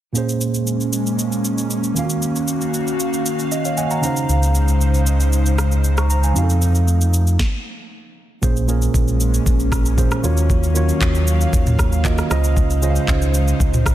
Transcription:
0.13 A#2 G#3 A#3 C#4 G#4, shaker
0.18 C5
0.29 shaker
0.41 shaker
0.54 shaker
0.67 shaker
0.80 shaker
0.93 shaker
1.06 shaker
1.19 shaker
1.32 shaker
1.45 shaker
1.58 shaker
1.71 shaker
1.84 shaker
1.94 D#3 A#3 C#4 F4 F#4 F5, shaker
1.99 F5
2.04 F#4
2.10 shaker
2.22 shaker
2.36 shaker
2.48 shaker
2.61 shaker
2.74 shaker
2.87 shaker
3.00 shaker
3.13 shaker
3.26 shaker
3.39 shaker
3.52 D#5, shaker
3.65 C#5 F5, shaker
3.77 D#5 F#5 G#5, shaker
3.91 F#5 A#5, shaker
4.01 C#3 G#3 C#4 D#4 C5 A#5, shaker
4.06 F5
4.17 shaker
4.29 C#2, shaker
4.43 shaker
4.55 shaker
4.68 shaker
4.81 shaker
4.94 shaker
5.07 shaker
5.20 shaker
5.33 shaker
5.46 shaker
5.58 cross-stick, shaker
5.72 shaker
5.84 shaker
5.97 A#5 C#6, cross-stick, shaker
6.10 A#5, shaker
6.23 F5 G#5, shaker
6.33 F2 F3 A3 C4 D#4 F#4, shaker
6.38 F5
6.43 A4
6.50 shaker
6.62 shaker
6.75 shaker
6.88 shaker
7.01 shaker
7.14 shaker
7.27 shaker
7.39 kick, snare
8.42 A#1 A#2 G#3 A#3 C#4 G#4 C5, kick, shaker
8.56 shaker
8.67 A#2 A#3 C#4 G#4 A#4, shaker
8.82 shaker
8.94 A#1, kick, shaker
9.08 shaker
9.20 shaker
9.34 shaker
9.46 A#1, kick, shaker
9.60 shaker
9.72 kick, cross-stick, shaker
9.85 shaker
9.97 A#2 A#3 C#4 G#4 C5, kick, shaker
10.11 cross-stick, shaker
10.23 D#2 D#3 F#3 A#3 F4 F#4 C#5 F5, shaker
10.37 shaker
10.50 kick, shaker
10.63 shaker
10.74 D#3 A#3 F4 F#4 C#5, shaker
10.89 shaker
11.01 D#2, kick, clap, shaker
11.15 shaker
11.27 shaker
11.41 shaker
11.53 D#2, kick, shaker
11.67 mid tom, shaker
11.79 kick, cross-stick, shaker
11.92 shaker
12.04 D#3 A#3 F4 F#4 D#5, kick, clap, shaker
12.18 cross-stick, shaker
12.30 C#2 C#3 G#3 C#4 D#4 F4 C5 D#5, cross-stick, shaker
12.44 shaker
12.57 kick, shaker
12.70 shaker
12.81 C#3 C#4 F4 C5 D#5, shaker
12.90 F5
12.96 shaker
13.08 C#2, kick, clap, shaker
13.22 shaker
13.34 shaker
13.48 shaker
13.60 C#2, kick, shaker
13.74 mid tom, shaker
13.86 kick, cross-stick, shaker

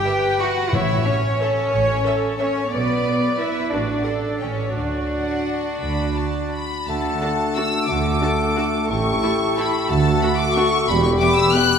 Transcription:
Already playing: G4 G5
0.06 B4 E5
0.40 F#4 E5 F#5
0.72 A1 A2 E4 C#5 E5
1.05 C#4 C#5 E5
1.42 A4 E5
1.73 A1 C#5
2.06 A4 E5
2.39 C#4 C#5 E5
2.71 B1 B3 B4 D5
3.06 D5
3.39 E4 B4 D5 E5
3.72 A1 D4 F#4 D5
4.05 A4 F#5
4.40 A1 C#4 C#5 G5
4.74 D2 D4 F#4 D5
5.11 F#5
5.82 D2 B5
6.16 A5
6.51 B5
6.86 D2 D3 A3 D4 F#4 A4 F#5 A5
7.21 D4 F#4 A4 A5
7.56 D4 F#4 A4 A5 E6
7.89 D2 D3 A3 D4 A4 F#5 D6
8.21 D4 F#4 A4 A5
8.56 D4 F#4 A4 A5
8.89 A1 A2 A3 E4 G4 A4 G5 C#6
9.23 E4 G4 A4 A5
9.56 E4 G4 A4 A5 B5
9.90 D2 A3 F#4 A4 F#5 A5
10.22 D4 F#4 A4 F#5 B5
10.38 D6
10.55 D4 F#4 A4 F#5 C#6
10.88 E1 E2 G3 B3 G4 B4 B5
11.03 C#6
11.19 B3 G4 E5 D6
11.37 E6
11.53 B3 G4 E5 F#6

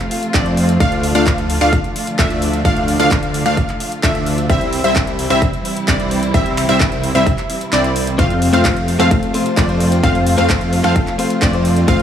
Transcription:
Already playing: C3 F3 A3 F4
0.11 open hi-hat
0.23 closed hi-hat
0.34 F2 A3 C4 F4 C5 D5, kick, clap, closed hi-hat
0.46 closed hi-hat
0.57 open hi-hat
0.69 closed hi-hat
0.80 D2 D3 A3 D4 F4 D5 F5, kick, closed hi-hat
0.92 closed hi-hat
1.03 open hi-hat
1.15 D2 A3 D4 F4 D5 F5, closed hi-hat
1.27 kick, clap, closed hi-hat
1.38 closed hi-hat
1.50 open hi-hat
1.61 D2 A3 D4 F4 D5 F5, finger snap, closed hi-hat
1.73 kick, closed hi-hat
1.84 closed hi-hat
1.96 open hi-hat
2.07 closed hi-hat
2.19 D2 A3 D4 F4 D5 E5, kick, clap, closed hi-hat
2.30 closed hi-hat
2.42 open hi-hat
2.53 closed hi-hat
2.65 D2 A3 D4 F4 D5 F5, kick, closed hi-hat
2.77 closed hi-hat
2.88 open hi-hat
3.00 D2 A3 D4 F4 D5 F5, closed hi-hat
3.11 kick, clap, closed hi-hat
3.23 closed hi-hat
3.34 open hi-hat
3.46 D2 A3 D4 F4 D5 F5, finger snap
3.57 kick, closed hi-hat
3.69 clap, closed hi-hat
3.80 open hi-hat
3.92 closed hi-hat
4.03 D2 A3 D4 F4 D5 E5, kick, clap, closed hi-hat
4.15 closed hi-hat
4.26 open hi-hat
4.38 closed hi-hat
4.50 C2 C3 E3 G3 C4 E4 C5 E5, kick, closed hi-hat
4.61 closed hi-hat
4.73 open hi-hat
4.84 C2 G3 C4 E4 C5 E5, closed hi-hat
4.96 kick, clap, closed hi-hat
5.07 closed hi-hat
5.19 open hi-hat
5.30 C2 G3 C4 E4 C5 E5, finger snap, closed hi-hat
5.42 kick, closed hi-hat
5.53 closed hi-hat
5.65 open hi-hat
5.77 closed hi-hat
5.88 C2 G3 C4 E4 C5 D5, kick, clap, closed hi-hat
6.00 closed hi-hat
6.11 open hi-hat
6.23 closed hi-hat
6.34 C2 G3 C4 E4 C5 E5, kick, closed hi-hat
6.46 closed hi-hat
6.57 finger snap, open hi-hat
6.69 C2 G3 C4 E4 C5 E5, closed hi-hat
6.80 kick, clap, closed hi-hat
6.92 closed hi-hat
7.04 open hi-hat
7.15 C2 G3 C4 E4 C5 E5, finger snap, closed hi-hat
7.26 kick, closed hi-hat
7.38 clap, closed hi-hat
7.50 open hi-hat
7.61 closed hi-hat
7.73 C2 G3 C4 E4 C5 D5, clap, closed hi-hat
7.84 closed hi-hat
7.96 open hi-hat
8.07 closed hi-hat
8.18 F2 F3 A3 C4 F4 C5 F5, kick, closed hi-hat, ride
8.30 closed hi-hat
8.42 open hi-hat
8.53 F2 A3 C4 F4 C5 F5, closed hi-hat
8.65 kick, clap, closed hi-hat, ride
8.77 closed hi-hat
8.88 open hi-hat
8.99 F2 A3 C4 F4 A4 C5 F5, finger snap, closed hi-hat
9.11 kick, closed hi-hat, ride
9.23 closed hi-hat
9.34 A3 C4 F4 C5, open hi-hat
9.46 closed hi-hat
9.57 F2 A3 C4 F4 C5 D5, kick, clap, closed hi-hat, ride
9.68 A3 C4 F4 C5, closed hi-hat
9.80 open hi-hat
9.92 closed hi-hat
10.03 F2 A3 C4 F4 C5 F5, kick, closed hi-hat, ride
10.15 closed hi-hat
10.27 open hi-hat
10.38 F2 A3 C4 F4 C5 F5, closed hi-hat
10.50 kick, clap, closed hi-hat, ride
10.61 closed hi-hat
10.73 open hi-hat
10.84 F2 A3 C4 F4 A4 C5 F5, finger snap, closed hi-hat
10.96 kick, closed hi-hat, ride
11.07 clap, closed hi-hat
11.18 A3 C4 F4 C5, open hi-hat
11.30 closed hi-hat
11.42 F2 A3 C4 F4 C5 D5, kick, clap, closed hi-hat, ride
11.53 A3 C4 F4 C5, closed hi-hat
11.65 open hi-hat
11.77 closed hi-hat
11.87 F2 A3 C4 F4 C5 F5, kick, closed hi-hat, ride

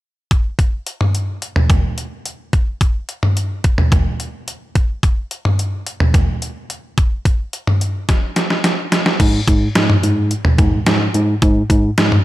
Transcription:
0.31 kick, closed hi-hat
0.59 kick, closed hi-hat
0.87 closed hi-hat
1.01 mid tom
1.15 closed hi-hat
1.42 closed hi-hat
1.56 mid tom
1.70 kick, closed hi-hat, mid tom
1.98 closed hi-hat
2.26 closed hi-hat
2.53 kick, closed hi-hat
2.81 kick, closed hi-hat
3.09 closed hi-hat
3.23 mid tom
3.37 closed hi-hat
3.64 kick, closed hi-hat
3.78 mid tom
3.92 kick, closed hi-hat, mid tom
4.20 closed hi-hat
4.48 closed hi-hat
4.75 kick, closed hi-hat
5.03 kick, closed hi-hat
5.31 closed hi-hat
5.45 mid tom
5.59 closed hi-hat
5.87 closed hi-hat
6.00 mid tom
6.14 kick, closed hi-hat, mid tom
6.42 closed hi-hat
6.70 closed hi-hat
6.98 kick, closed hi-hat
7.25 kick, closed hi-hat
7.53 closed hi-hat
7.67 mid tom
7.81 closed hi-hat
8.09 kick, snare, closed hi-hat
8.36 snare, closed hi-hat
8.50 snare
8.64 snare, closed hi-hat
8.92 snare, closed hi-hat
9.06 snare
9.20 G#2, kick, closed hi-hat, crash
9.48 G#2, kick, closed hi-hat
9.75 G#2, snare, closed hi-hat
9.90 mid tom
10.03 G#2, closed hi-hat
10.31 closed hi-hat
10.45 mid tom
10.58 G#2, kick, closed hi-hat, mid tom
10.86 G#2, snare, closed hi-hat
11.14 G#2, closed hi-hat
11.42 G#2, kick, closed hi-hat
11.70 G#2, kick, closed hi-hat
11.98 G#2, snare, closed hi-hat
12.12 mid tom

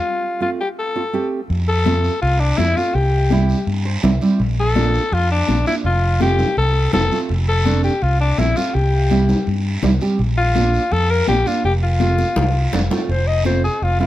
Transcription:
Already playing: F4
0.40 A3 C4 F4
0.60 G4
0.79 A4
0.95 A3 C4 F4
1.13 A3 C4 G4
1.50 F2, high conga, long guiro
1.68 A4
1.86 A3 C4 F4, high conga, short guiro
2.04 short guiro
2.22 C2 F4, high conga, long guiro
2.40 D4
2.58 F2 A3 C4 E4 F4, high conga, short guiro
2.76 A3 C4 F4, short guiro
2.94 C2 G4, high conga, long guiro
3.31 G3 C4 E4, high conga, short guiro
3.49 short guiro
3.67 G2, high conga, long guiro
3.85 C5
4.03 C2 G3 C4 E4 E5, high conga, low conga, short guiro
4.21 G3 C4 E4, short guiro
4.39 A#1, high conga, long guiro
4.60 A4
4.75 A#3 D4 F4, high conga, short guiro
4.94 short guiro
5.12 F2 F4, high conga, long guiro
5.32 D4
5.48 A#1 A#3 D4 F4, high conga, short guiro
5.66 A#3 D4 E4 F4, short guiro
5.84 F1 F4, high conga, long guiro
6.20 A3 C4 F4 G4, high conga, short guiro
6.39 low conga, short guiro
6.57 C2 A4, high conga, long guiro
6.93 F1 A3 C4 F4 A4, high conga, low conga, short guiro
7.12 A3 C4 F4, short guiro
7.29 F1, high conga, long guiro
7.48 A4
7.65 A3 C4 D4, high conga, short guiro
7.83 G4, short guiro
8.02 C2 F4, high conga, long guiro
8.20 D4
8.38 A#1 A3 C4 E4 F4, high conga, short guiro
8.56 A3 C4 F4, short guiro
8.74 C2 G4, high conga, long guiro
9.11 G3 C4 E4, high conga, short guiro
9.29 low conga, short guiro
9.46 G2, high conga, long guiro
9.83 C2 G3 C4 E4, high conga, low conga, short guiro
10.01 G3 C4 G4, short guiro
10.19 A#1, high conga, long guiro
10.37 F4
10.55 A#3 D4 F4, high conga, short guiro
10.73 short guiro
10.91 F2 A4, high conga, long guiro
11.10 A#4
11.28 A#1 A#3 D4 F4 G4, high conga, short guiro
11.46 A#3 D4 F4, short guiro
11.64 F1 G4, high conga, long guiro
11.83 F4
12.00 A3 C4 F4, high conga, short guiro
12.18 high conga, short guiro
12.36 C2, low conga, long guiro
12.72 F1 A3 C4 D4, low conga, short guiro
12.90 A3 C4 F4, low conga, short guiro
13.09 F1 C5, high conga, long guiro
13.27 D#5
13.45 A3 C4 F4 C5, high conga, short guiro
13.64 G#4, short guiro
13.82 F1 F4, high conga, long guiro
13.99 A3 C4 E4 F4

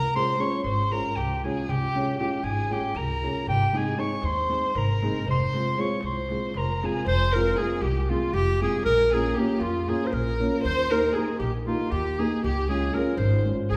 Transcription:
Already playing: A#4 A#5
0.15 G#3 C#4 F4 G#4 C5 C6, darbuka tek
0.30 darbuka tek
0.39 G#3 C#4 F4 G#4 C#5 C#6, darbuka tek
0.53 darbuka tek
0.63 G#1 C5 C6, darbuka tek
0.91 G#3 C#4 F4 G#4 A#4 A#5, darbuka tek
1.04 darbuka tek
1.16 C#2 G4 G5, darbuka tek, darbuka dum
1.43 G#3 C#4 F4 G#4 G#5, darbuka tek
1.58 darbuka tek
1.69 C#2 G4 G5, darbuka dum
1.94 G#3 C#4 F4 G#4, darbuka tek
2.08 darbuka tek
2.18 G#3 C#4 F4 G4 G#4 G5, darbuka tek
2.33 darbuka tek
2.43 G#1 G#4 G#5, darbuka tek
2.58 darbuka tek
2.69 G#3 C#4 F4 G4 G#4 G5, darbuka tek
2.84 darbuka tek
2.95 C#2 A#4 A#5, darbuka tek, darbuka dum
3.22 G#3 C#4 F4 G#4, darbuka tek
3.36 darbuka tek
3.47 G#1 G4 G5, darbuka dum
3.72 G#3 C4 D#4 G#4, darbuka tek
3.77 G#5
3.87 darbuka tek
3.96 G#3 C4 D#4 G#4 C#5 C#6, darbuka tek
4.11 darbuka tek
4.22 D#2 C5 C6, darbuka tek
4.37 darbuka tek
4.48 G#3 C4 D#4 G#4, darbuka tek
4.63 darbuka tek
4.75 G#1 A#4 A#5, darbuka tek, darbuka dum
5.01 G#3 C4 D#4 G#4, darbuka tek
5.15 darbuka tek
5.27 F1 C5 C6, darbuka dum
5.40 darbuka tek
5.53 G#3 C4 F4 G#4, darbuka tek
5.67 darbuka tek
5.78 G#3 C4 F4 G#4 C#5 C#6
5.90 darbuka tek
6.01 C2 C5, darbuka tek
6.06 C6
6.29 G#3 C4 F4 G#4, darbuka tek
6.43 darbuka tek
6.54 F1 A#4 A#5, darbuka tek, darbuka dum
6.83 G#3 C4 F4 G#4 G#5, darbuka tek
6.96 darbuka tek
7.06 F1 C5
7.32 G#3 C4 F4 A#4
7.36 G#4
7.57 G#3 C4 F4 G#4
7.81 C2 G4
8.01 G4
8.09 G#3 C4 F4 G#4
8.33 F1 G4
8.61 G#3 C4 F4 G#4
8.85 A#1 A#4
9.10 A#3 C#4 F4 G#4
9.14 A#4
9.34 A#3 C#4 G4
9.38 F4 G4 A#4
9.59 F2 F4
9.88 A#3 C#4 F4 G#4 A#4
10.04 C5
10.10 A#1 A#4
10.14 A#4
10.39 A#3 C#4 F4 A#4
10.63 D#2 C5
10.90 A#3 D#4 G4 A#4
11.13 A#3 D#4 G4 G#4
11.17 A#4
11.39 A#1 G4
11.66 A#3 D#4 F4 G4 A#4
11.91 D#2 G4
12.19 A#3 D#4 G4 G#4 A#4
12.44 C#2 G4
12.68 G#3 C#4 F4 G#4
12.93 G#3 C#4 F4 G#4 A#4
13.16 G#1 C5
13.44 G#3 C#4 F4 G#4
13.69 C2 G#4

